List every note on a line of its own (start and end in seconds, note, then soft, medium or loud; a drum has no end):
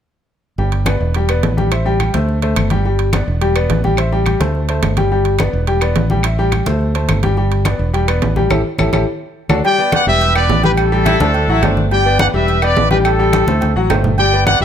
0.58 0.98 G1 medium
0.58 0.81 G3 medium
0.58 0.82 G4 medium
0.58 0.82 G5 medium
0.58 high conga soft
0.72 high conga soft
0.72 high timbale medium
0.86 1.10 B3 medium
0.86 1.10 B4 medium
0.86 1.10 D5 medium
0.86 high conga medium
0.86 high timbale medium
0.86 claves medium
1.00 1.40 E1 medium
1.14 1.27 G3 medium
1.14 1.27 G4 medium
1.14 1.28 G5 medium
1.14 high conga soft
1.14 high timbale medium
1.29 1.52 B3 medium
1.29 1.53 B4 medium
1.29 1.53 D5 medium
1.29 high conga soft
1.29 high timbale medium
1.29 claves medium
1.43 2.09 A1 medium
1.43 high conga medium
1.43 high timbale medium
1.43 low timbale medium
1.57 1.69 G3 medium
1.57 1.69 G4 medium
1.57 1.69 G5 medium
1.57 high conga medium
1.72 1.83 C4 medium
1.72 1.83 C5 medium
1.72 1.83 E5 medium
1.72 high conga soft
1.72 high timbale loud
1.72 claves medium
1.85 1.97 G3 medium
1.85 1.97 G4 medium
1.85 1.97 G5 medium
1.85 high conga soft
2.00 2.12 G3 medium
2.00 2.12 G4 medium
2.00 2.12 G5 medium
2.00 high conga medium
2.00 high timbale medium
2.00 claves medium
2.14 2.54 D2 medium
2.14 2.37 A3 medium
2.14 2.37 A4 medium
2.14 2.37 C5 medium
2.14 high conga medium
2.14 high timbale medium
2.29 high conga soft
2.42 2.66 A3 medium
2.42 2.66 A4 medium
2.42 2.66 C5 medium
2.42 high conga soft
2.42 high timbale medium
2.56 3.22 G1 medium
2.56 high conga medium
2.56 high timbale medium
2.56 claves medium
2.70 2.82 G3 medium
2.70 2.83 G4 medium
2.70 2.83 G5 medium
2.70 high conga medium
2.70 high timbale medium
2.85 3.08 G3 medium
2.85 3.08 G4 medium
2.85 3.09 G5 medium
2.85 high conga soft
2.99 high conga soft
2.99 high timbale medium
3.12 3.36 B3 medium
3.12 3.36 B4 medium
3.12 3.36 D5 medium
3.12 high conga loud
3.12 high timbale medium
3.12 claves medium
3.28 3.67 E1 medium
3.41 3.53 G3 medium
3.41 3.53 G4 medium
3.41 3.53 G5 medium
3.41 high conga soft
3.41 high timbale medium
3.56 3.79 B3 medium
3.56 3.79 B4 medium
3.56 3.79 D5 medium
3.56 high conga soft
3.56 high timbale medium
3.56 claves medium
3.70 4.35 A1 medium
3.70 high conga medium
3.70 high timbale medium
3.70 low timbale medium
3.84 3.95 G3 medium
3.84 3.96 G4 medium
3.84 3.96 G5 medium
3.84 high conga medium
3.97 4.09 C4 medium
3.97 4.10 C5 medium
3.97 4.10 E5 medium
3.97 high conga soft
3.97 high timbale medium
3.97 claves medium
4.12 4.24 G3 medium
4.12 4.24 G4 medium
4.12 4.24 G5 medium
4.12 high conga soft
4.26 4.38 G3 medium
4.26 4.38 G4 medium
4.26 4.38 G5 medium
4.26 high conga medium
4.26 high timbale medium
4.26 claves medium
4.40 4.80 D2 medium
4.40 4.63 A3 medium
4.40 4.64 A4 medium
4.40 4.64 C5 medium
4.40 high conga medium
4.40 high timbale medium
4.55 high conga soft
4.69 4.92 A3 medium
4.69 4.92 A4 medium
4.69 4.92 C5 medium
4.69 high conga soft
4.69 high timbale medium
4.83 5.48 G1 medium
4.83 high conga medium
4.83 high timbale medium
4.83 low timbale medium
4.83 claves medium
4.97 5.09 G3 medium
4.97 5.09 G4 medium
4.97 5.09 G5 medium
4.97 high conga medium
4.97 high timbale medium
5.12 5.35 G3 medium
5.12 5.35 G4 medium
5.12 5.35 G5 medium
5.12 high conga soft
5.25 high conga soft
5.25 high timbale medium
5.39 5.63 B3 medium
5.39 5.63 B4 medium
5.39 5.63 D5 medium
5.39 high conga medium
5.39 high timbale medium
5.39 claves medium
5.53 5.93 E1 medium
5.67 5.79 G3 medium
5.67 5.79 G4 medium
5.67 5.80 G5 medium
5.67 high conga soft
5.67 high timbale medium
5.81 6.05 B3 medium
5.81 6.05 B4 medium
5.81 6.05 D5 medium
5.81 high conga soft
5.81 high timbale medium
5.81 claves medium
5.96 6.61 A1 medium
5.96 high conga medium
5.96 high timbale medium
5.96 low timbale medium
6.10 6.22 G3 medium
6.10 6.22 G4 medium
6.10 6.22 G5 medium
6.10 high conga medium
6.23 6.36 C4 medium
6.23 6.36 C5 medium
6.23 6.36 E5 medium
6.23 high conga soft
6.23 high timbale medium
6.23 claves medium
6.39 6.50 G3 medium
6.39 6.50 G4 medium
6.39 6.50 G5 medium
6.39 high conga soft
6.52 6.64 G3 medium
6.52 6.64 G4 medium
6.52 6.64 G5 medium
6.52 high conga medium
6.52 high timbale medium
6.52 claves medium
6.66 7.06 D2 medium
6.66 6.90 A3 medium
6.66 6.90 A4 medium
6.66 6.90 C5 medium
6.66 high conga medium
6.66 high timbale medium
6.81 high conga soft
6.95 7.18 A3 medium
6.95 7.18 A4 medium
6.95 7.18 C5 medium
6.95 high conga soft
6.95 high timbale medium
7.09 7.74 G1 loud
7.09 high conga medium
7.09 high timbale medium
7.09 claves medium
7.23 7.35 G3 medium
7.23 7.35 G4 medium
7.23 7.35 G5 medium
7.23 high conga medium
7.23 high timbale medium
7.37 7.61 G3 medium
7.37 7.61 G4 medium
7.37 7.61 G5 medium
7.37 high conga soft
7.51 high conga soft
7.51 high timbale medium
7.65 7.88 B3 medium
7.65 7.89 B4 medium
7.65 7.89 D5 medium
7.65 high conga medium
7.65 high timbale medium
7.65 claves medium
7.79 8.19 E1 medium
7.93 8.05 G3 medium
7.93 8.05 G4 medium
7.93 8.05 G5 medium
7.93 high conga soft
7.93 high timbale medium
8.08 8.31 B3 medium
8.08 8.31 B4 medium
8.08 8.32 D5 medium
8.08 high conga soft
8.08 high timbale medium
8.08 claves medium
8.22 8.49 A1 medium
8.22 high conga medium
8.22 high timbale medium
8.22 low timbale medium
8.36 8.48 G3 medium
8.36 8.48 G4 medium
8.36 8.48 G5 medium
8.36 high conga medium
8.50 8.61 A1 medium
8.50 8.60 E4 medium
8.50 8.60 G4 medium
8.50 8.60 A4 medium
8.50 high conga loud
8.50 high timbale loud
8.50 claves medium
8.78 8.90 A1 medium
8.78 8.88 E4 medium
8.78 8.89 G4 medium
8.78 8.88 A4 medium
8.78 high conga medium
8.78 high timbale medium
8.78 claves loud
8.93 9.04 A1 medium
8.93 9.02 E4 medium
8.93 9.02 G4 medium
8.93 9.03 A4 medium
8.93 high conga medium
8.93 high timbale loud
8.93 claves medium
9.49 9.60 D2 medium
9.49 9.59 D4 loud
9.49 9.59 F#4 loud
9.49 9.59 A4 medium
9.49 high conga loud
9.49 high timbale loud
9.49 claves medium
9.64 9.76 G3 medium
9.64 9.76 G4 medium
9.64 9.91 D5 medium
9.64 9.76 G5 medium
9.64 9.92 G5 loud
9.64 high conga soft
9.64 low agogo medium
9.78 10.02 B3 medium
9.78 10.02 B4 medium
9.78 10.02 D5 medium
9.78 high conga soft
9.92 10.06 D5 medium
9.92 10.07 F#5 loud
9.92 high conga loud
9.92 low timbale medium
9.92 low agogo loud
9.92 claves medium
10.06 10.46 E1 loud
10.06 10.30 G3 medium
10.06 10.30 G4 medium
10.06 10.34 B4 medium
10.06 10.34 E5 loud
10.06 10.31 G5 medium
10.06 high conga soft
10.21 high conga soft
10.21 low agogo medium
10.35 10.59 B3 medium
10.35 10.62 B4 medium
10.35 10.59 B4 medium
10.35 10.59 D5 medium
10.35 10.62 D5 medium
10.35 high conga soft
10.35 low agogo loud
10.35 claves medium
10.49 11.15 A1 loud
10.49 high conga medium
10.49 low timbale medium
10.63 10.87 G3 medium
10.63 10.87 G4 loud
10.63 10.71 G4 medium
10.63 10.71 B4 medium
10.63 10.87 G5 medium
10.63 high conga medium
10.63 low agogo medium
10.77 11.74 E4 medium
10.77 11.74 A4 loud
10.77 high conga soft
10.77 low agogo loud
10.77 claves medium
10.92 11.15 G3 loud
10.92 11.15 G4 loud
10.92 11.15 G5 loud
10.92 high conga soft
11.06 11.19 E4 loud
11.06 high conga medium
11.06 low timbale medium
11.06 low agogo loud
11.06 claves medium
11.20 11.47 D2 medium
11.20 11.44 A3 medium
11.20 11.34 D4 loud
11.20 11.44 A4 medium
11.20 11.44 C5 medium
11.20 high conga medium
11.34 11.48 D4 medium
11.34 high conga soft
11.34 low agogo medium
11.48 11.62 A1 medium
11.48 11.61 F#3 medium
11.48 11.63 E4 loud
11.48 11.61 F#4 medium
11.48 11.61 F#5 medium
11.48 high conga soft
11.62 12.28 G1 loud
11.62 11.87 A3 medium
11.62 11.85 D4 medium
11.62 11.87 A4 medium
11.62 11.87 C5 medium
11.62 high conga medium
11.62 low timbale medium
11.62 low agogo loud
11.62 claves medium
11.77 high conga medium
11.91 12.03 G3 medium
11.91 12.03 G4 medium
11.91 12.18 D5 medium
11.91 12.18 G5 loud
11.91 12.03 G5 medium
11.91 high conga soft
11.91 low agogo medium
12.06 12.29 B3 medium
12.06 12.29 B4 medium
12.06 12.29 D5 medium
12.06 high conga soft
12.19 12.27 D5 medium
12.19 12.27 F#5 loud
12.19 high conga loud
12.19 low timbale medium
12.19 low agogo loud
12.19 claves medium
12.34 12.73 E1 medium
12.34 12.57 G3 medium
12.34 12.57 G4 medium
12.34 12.61 B4 medium
12.34 12.61 E5 loud
12.34 12.57 G5 medium
12.34 high conga soft
12.48 high conga soft
12.48 low agogo medium
12.62 12.86 B3 medium
12.62 12.86 B4 medium
12.62 12.90 B4 medium
12.62 12.86 D5 medium
12.62 12.91 D5 loud
12.62 high conga soft
12.62 low agogo loud
12.62 claves medium
12.76 13.42 A1 loud
12.76 high conga medium
12.76 low timbale medium
12.90 13.14 G3 loud
12.90 13.14 G4 loud
12.90 12.98 G4 medium
12.90 12.97 B4 medium
12.90 13.14 G5 medium
12.90 high conga loud
12.90 low agogo medium
13.05 13.73 E4 medium
13.05 13.73 A4 medium
13.05 high conga soft
13.05 low agogo loud
13.05 claves medium
13.19 13.42 G3 medium
13.19 13.42 G4 loud
13.19 13.43 G5 loud
13.19 high conga soft
13.33 high conga loud
13.33 low timbale medium
13.33 low agogo medium
13.33 claves medium
13.47 13.73 D2 medium
13.47 13.71 A3 medium
13.47 13.71 A4 medium
13.47 13.71 C5 medium
13.47 high conga medium
13.61 high conga medium
13.61 low agogo medium
13.76 13.89 A1 medium
13.76 13.87 F#3 medium
13.76 13.88 F#4 medium
13.76 13.88 F#5 loud
13.90 14.55 G1 loud
13.90 14.13 A3 medium
13.90 14.14 A4 medium
13.90 14.14 C5 medium
13.90 low conga medium
13.90 low timbale medium
13.90 low agogo loud
13.90 claves medium
14.04 low conga medium
14.18 14.30 G3 medium
14.18 14.30 G4 medium
14.18 14.45 D5 medium
14.18 14.45 G5 loud
14.18 14.30 G5 medium
14.18 high conga soft
14.18 low agogo medium
14.33 14.56 B3 medium
14.33 14.56 B4 medium
14.33 14.56 D5 medium
14.33 high conga soft
14.47 14.60 D5 medium
14.47 14.60 F#5 loud
14.47 high conga loud
14.47 low timbale medium
14.47 low agogo medium
14.47 claves medium
14.60 14.65 E1 medium
14.60 14.65 G3 medium
14.60 14.65 G4 medium
14.60 14.65 G5 medium
14.60 high conga soft